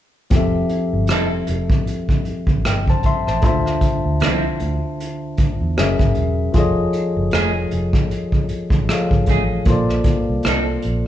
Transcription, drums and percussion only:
0.30 kick, closed hi-hat
0.69 closed hi-hat
1.07 cross-stick, closed hi-hat
1.47 closed hi-hat
1.70 kick
1.87 closed hi-hat
2.09 kick
2.25 closed hi-hat
2.47 kick
2.65 cross-stick, closed hi-hat
2.88 kick
3.03 kick, closed hi-hat
3.27 cross-stick
3.42 kick, closed hi-hat
3.66 cross-stick
3.81 kick, closed hi-hat
4.20 cross-stick, closed hi-hat
4.60 closed hi-hat
5.00 closed hi-hat
5.37 kick, closed hi-hat
5.77 cross-stick, closed hi-hat
5.99 kick, cross-stick
6.15 closed hi-hat
6.53 kick, closed hi-hat
6.93 closed hi-hat
7.31 cross-stick, closed hi-hat
7.71 closed hi-hat
7.93 kick, cross-stick
8.11 closed hi-hat
8.32 kick
8.49 closed hi-hat
8.70 kick
8.89 cross-stick, closed hi-hat
9.11 kick
9.26 kick, closed hi-hat
9.65 kick, closed hi-hat
9.89 cross-stick
10.04 kick, closed hi-hat
10.43 cross-stick, closed hi-hat
10.82 closed hi-hat

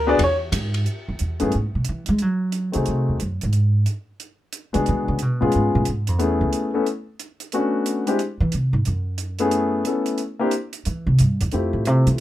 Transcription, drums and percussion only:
0.19 kick, ride
0.52 kick, hi-hat pedal, ride
0.74 ride
0.86 closed hi-hat
1.19 closed hi-hat
1.40 closed hi-hat
1.52 closed hi-hat
1.85 closed hi-hat
2.06 closed hi-hat
2.19 closed hi-hat
2.52 closed hi-hat
2.73 closed hi-hat
2.86 closed hi-hat
3.20 closed hi-hat
3.41 closed hi-hat
3.53 closed hi-hat
3.86 closed hi-hat
4.20 closed hi-hat
4.53 closed hi-hat
4.74 closed hi-hat
4.86 closed hi-hat
5.19 closed hi-hat
5.52 closed hi-hat
5.85 closed hi-hat
6.07 closed hi-hat
6.20 closed hi-hat
6.53 closed hi-hat
6.86 closed hi-hat
7.19 closed hi-hat
7.40 closed hi-hat
7.52 closed hi-hat
7.86 closed hi-hat
8.07 closed hi-hat
8.19 closed hi-hat
8.52 closed hi-hat
8.85 closed hi-hat
9.18 closed hi-hat
9.39 closed hi-hat
9.51 closed hi-hat
9.85 closed hi-hat
10.06 closed hi-hat
10.18 closed hi-hat
10.51 closed hi-hat
10.73 closed hi-hat
10.85 closed hi-hat
11.19 closed hi-hat
11.41 closed hi-hat
11.52 closed hi-hat
11.85 closed hi-hat
12.07 closed hi-hat

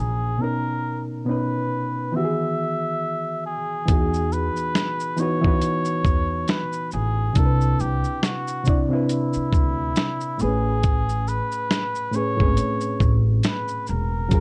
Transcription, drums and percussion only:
3.88 kick, closed hi-hat, shaker
4.14 shaker
4.32 shaker
4.56 shaker
4.75 snare, closed hi-hat, shaker
5.00 shaker
5.17 shaker
5.44 kick
5.62 closed hi-hat, shaker
5.85 shaker
6.05 kick, shaker
6.48 snare, closed hi-hat, shaker
6.73 shaker
6.91 shaker
7.35 kick, closed hi-hat, shaker
7.61 shaker
7.80 shaker
8.04 shaker
8.23 snare, closed hi-hat, shaker
8.48 shaker
8.65 kick, shaker
9.09 closed hi-hat, shaker
9.33 shaker
9.52 kick, shaker
9.96 snare, closed hi-hat, shaker
10.20 shaker
10.39 shaker
10.83 kick, closed hi-hat, shaker
11.09 shaker
11.28 shaker
11.52 shaker
11.71 snare, closed hi-hat, shaker
11.95 shaker
12.13 shaker
12.40 kick
12.57 closed hi-hat, shaker
12.81 shaker
13.00 kick, shaker
13.44 snare, closed hi-hat, shaker
13.68 shaker
13.87 shaker
14.31 kick, closed hi-hat, shaker

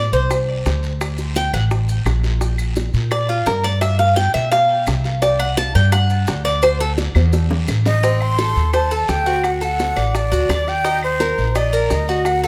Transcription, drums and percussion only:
0.13 short guiro, maracas
0.31 high bongo, long guiro, claves, maracas
0.65 high bongo, low bongo, short guiro, maracas
0.83 short guiro, maracas
1.01 high bongo, long guiro, claves, maracas
1.18 high bongo, maracas
1.35 high bongo, short guiro, maracas
1.53 high bongo, short guiro, claves, maracas
1.71 high bongo, long guiro, maracas
1.89 maracas
2.06 high bongo, low bongo, short guiro, claves, maracas
2.24 high bongo, short guiro, maracas
2.41 high bongo, long guiro, maracas
2.58 claves, maracas
2.76 high bongo, short guiro, maracas
2.94 short guiro, maracas
3.11 high bongo, long guiro, claves, maracas
3.46 high bongo, low bongo, short guiro, maracas
3.64 short guiro, maracas
3.81 high bongo, long guiro, claves, maracas
3.99 high bongo
4.16 high bongo, short guiro, maracas
4.34 high bongo, short guiro, claves, maracas
4.52 high bongo, long guiro, maracas
4.87 high bongo, low bongo, short guiro, claves, maracas
5.04 high bongo, short guiro, maracas
5.22 high bongo, long guiro, maracas
5.39 claves
5.57 high bongo, short guiro, maracas
5.75 short guiro, maracas
5.92 high bongo, long guiro, claves, maracas
6.10 maracas
6.27 high bongo, low bongo, short guiro, maracas
6.45 short guiro, maracas
6.62 high bongo, long guiro, claves, maracas
6.81 high bongo
6.98 high bongo, short guiro, maracas
7.15 high bongo, short guiro, claves, maracas
7.33 high bongo, long guiro, maracas
7.51 low bongo
7.68 low bongo, short guiro, claves, maracas
7.85 low bongo, short guiro, maracas
8.03 high bongo, long guiro, maracas
8.21 claves
8.38 high bongo, short guiro, maracas
8.56 short guiro, maracas
8.73 high bongo, long guiro, claves, maracas
8.91 maracas
9.08 high bongo, low bongo, short guiro, maracas
9.26 short guiro, maracas
9.44 high bongo, long guiro, claves, maracas
9.62 high bongo, maracas
9.79 high bongo, short guiro, maracas
9.97 high bongo, short guiro, claves, maracas
10.15 high bongo, long guiro, maracas
10.33 maracas
10.50 high bongo, low bongo, short guiro, claves, maracas
10.68 high bongo, short guiro, maracas
10.85 high bongo, long guiro, maracas
11.03 claves
11.20 high bongo, short guiro, maracas
11.38 short guiro, maracas
11.55 high bongo, long guiro, claves, maracas
11.73 maracas
11.90 high bongo, low bongo, short guiro, maracas
12.08 short guiro, maracas
12.25 high bongo, long guiro, claves, maracas
12.44 high bongo

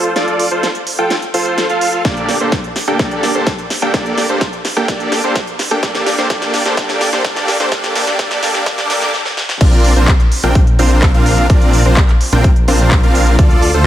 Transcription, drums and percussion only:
0.04 closed hi-hat
0.16 snare, closed hi-hat
0.28 closed hi-hat
0.39 open hi-hat
0.51 closed hi-hat
0.63 snare, closed hi-hat
0.75 closed hi-hat
0.87 open hi-hat
0.99 closed hi-hat
1.10 snare, closed hi-hat
1.22 closed hi-hat
1.34 open hi-hat
1.46 closed hi-hat
1.58 snare, closed hi-hat
1.70 closed hi-hat
1.81 open hi-hat
2.05 kick, snare, closed hi-hat
2.17 closed hi-hat
2.29 snare, open hi-hat
2.40 closed hi-hat
2.52 kick, snare, closed hi-hat
2.64 closed hi-hat
2.76 snare, open hi-hat
2.88 closed hi-hat
2.99 kick, snare, closed hi-hat
3.11 closed hi-hat
3.23 snare, open hi-hat
3.35 closed hi-hat
3.47 kick, snare, closed hi-hat
3.59 closed hi-hat
3.70 snare, open hi-hat
3.82 closed hi-hat
3.94 kick, snare, closed hi-hat
4.06 closed hi-hat
4.18 snare, open hi-hat
4.29 closed hi-hat
4.41 kick, snare, closed hi-hat
4.53 closed hi-hat
4.65 snare, open hi-hat
4.77 closed hi-hat
4.88 kick, snare, closed hi-hat
5.00 closed hi-hat
5.12 snare, open hi-hat
5.24 closed hi-hat
5.36 kick, snare, closed hi-hat
5.47 closed hi-hat
5.59 snare, open hi-hat
5.71 closed hi-hat
5.83 kick, snare, closed hi-hat
5.95 snare, closed hi-hat
6.06 snare, open hi-hat
6.18 snare, closed hi-hat
6.30 kick, snare, closed hi-hat
6.42 snare, closed hi-hat
6.54 snare, open hi-hat
6.66 snare, closed hi-hat
6.77 kick, snare, closed hi-hat
6.89 snare, closed hi-hat
7.01 snare, open hi-hat
7.13 snare, closed hi-hat
7.25 kick, snare, closed hi-hat
7.36 snare, closed hi-hat
7.48 snare, open hi-hat
7.60 snare, closed hi-hat
7.72 kick, snare, closed hi-hat
7.84 snare, closed hi-hat
7.95 snare, open hi-hat
8.07 snare, closed hi-hat
8.19 kick, snare, closed hi-hat
8.31 snare, closed hi-hat
8.43 snare, open hi-hat
8.54 snare, closed hi-hat
8.66 kick, snare, closed hi-hat
8.78 snare, closed hi-hat
8.90 snare, open hi-hat
9.02 snare, closed hi-hat
9.14 snare
9.25 snare
9.37 snare
9.49 snare
9.61 kick, closed hi-hat, crash
9.73 closed hi-hat
9.84 open hi-hat
9.96 closed hi-hat
10.08 kick, clap, closed hi-hat
10.20 closed hi-hat
10.32 open hi-hat
10.43 closed hi-hat
10.55 kick, closed hi-hat
10.67 closed hi-hat
10.79 open hi-hat
10.91 closed hi-hat
11.02 kick, clap, closed hi-hat
11.14 closed hi-hat
11.26 open hi-hat
11.38 closed hi-hat
11.50 kick, closed hi-hat
11.62 closed hi-hat
11.73 open hi-hat
11.85 closed hi-hat
11.97 kick, clap, closed hi-hat
12.09 clap, closed hi-hat
12.21 open hi-hat
12.32 closed hi-hat
12.44 kick, closed hi-hat
12.56 closed hi-hat
12.68 open hi-hat
12.80 closed hi-hat
12.91 kick, clap, closed hi-hat
13.03 closed hi-hat
13.15 open hi-hat
13.27 closed hi-hat
13.39 kick, closed hi-hat
13.51 closed hi-hat
13.62 open hi-hat
13.74 closed hi-hat

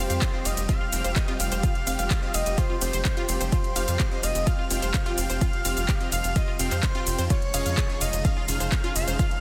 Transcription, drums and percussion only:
0.10 closed hi-hat, shaker
0.22 kick, clap, closed hi-hat, ride, shaker
0.45 open hi-hat, ride, shaker
0.57 closed hi-hat, shaker
0.69 kick, closed hi-hat, ride, shaker
0.93 open hi-hat, ride, shaker
1.04 closed hi-hat, shaker
1.16 kick, clap, closed hi-hat, ride, shaker
1.28 closed hi-hat
1.40 open hi-hat, ride, shaker
1.52 closed hi-hat, shaker
1.63 kick, closed hi-hat, ride, shaker
1.75 closed hi-hat
1.87 open hi-hat, ride, shaker
1.99 closed hi-hat, shaker
2.10 kick, clap, closed hi-hat, ride, shaker
2.34 open hi-hat, ride, shaker
2.46 closed hi-hat, shaker
2.58 kick, closed hi-hat, ride, shaker
2.81 open hi-hat, ride, shaker
2.93 closed hi-hat, shaker
3.05 kick, clap, closed hi-hat, ride, shaker
3.17 closed hi-hat
3.29 open hi-hat, ride, shaker
3.41 closed hi-hat, shaker
3.52 kick, closed hi-hat, ride, shaker
3.64 closed hi-hat
3.76 open hi-hat, ride, shaker
3.88 closed hi-hat, shaker
3.99 kick, clap, closed hi-hat, ride, shaker
4.23 open hi-hat, ride, shaker
4.35 closed hi-hat, shaker
4.47 kick, closed hi-hat, ride, shaker
4.71 open hi-hat, ride, shaker
4.82 closed hi-hat, shaker
4.94 kick, clap, closed hi-hat, ride, shaker
5.06 closed hi-hat
5.18 open hi-hat, ride, shaker
5.30 closed hi-hat, shaker
5.41 kick, closed hi-hat, ride, shaker
5.53 closed hi-hat
5.65 open hi-hat, ride, shaker
5.77 closed hi-hat, shaker
5.88 kick, clap, closed hi-hat, ride, shaker
6.01 closed hi-hat
6.12 open hi-hat, ride, shaker
6.24 closed hi-hat, shaker
6.36 kick, closed hi-hat, ride, shaker
6.59 open hi-hat, ride, shaker
6.71 clap, closed hi-hat, shaker
6.83 kick, clap, closed hi-hat, ride, shaker
6.95 closed hi-hat
7.07 open hi-hat, ride, shaker
7.19 closed hi-hat, shaker
7.30 kick, closed hi-hat, ride, shaker
7.42 closed hi-hat
7.54 open hi-hat, ride, shaker
7.66 closed hi-hat, shaker
7.77 kick, clap, closed hi-hat, ride, shaker
8.01 open hi-hat, ride, shaker
8.13 closed hi-hat, shaker
8.25 kick, closed hi-hat, ride, shaker
8.48 open hi-hat, ride, shaker
8.60 closed hi-hat, shaker
8.72 kick, clap, closed hi-hat, ride, shaker
8.84 closed hi-hat
8.96 open hi-hat, ride, shaker
9.08 closed hi-hat, shaker
9.19 kick, closed hi-hat, ride, shaker
9.31 closed hi-hat

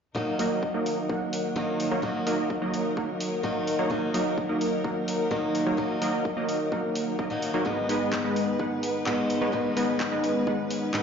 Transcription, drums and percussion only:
0.16 kick
0.39 open hi-hat
0.63 kick
0.86 open hi-hat
1.10 kick
1.33 open hi-hat
1.56 kick
1.80 open hi-hat
2.03 kick
2.27 open hi-hat
2.50 kick
2.74 open hi-hat
2.97 kick
3.21 open hi-hat
3.44 kick
3.67 open hi-hat
3.91 kick
4.14 open hi-hat
4.38 kick
4.61 open hi-hat
4.84 kick
5.08 open hi-hat
5.31 kick
5.55 open hi-hat
5.78 kick
6.02 open hi-hat
6.25 kick
6.49 open hi-hat
6.72 kick
6.95 open hi-hat
7.19 kick
7.42 open hi-hat
7.66 kick
7.89 open hi-hat
8.13 kick, clap
8.36 open hi-hat
8.60 kick
8.83 open hi-hat
9.06 kick, clap
9.30 open hi-hat
9.53 kick
9.77 open hi-hat
10.00 kick, clap
10.24 open hi-hat
10.47 kick
10.71 open hi-hat
10.94 kick, clap

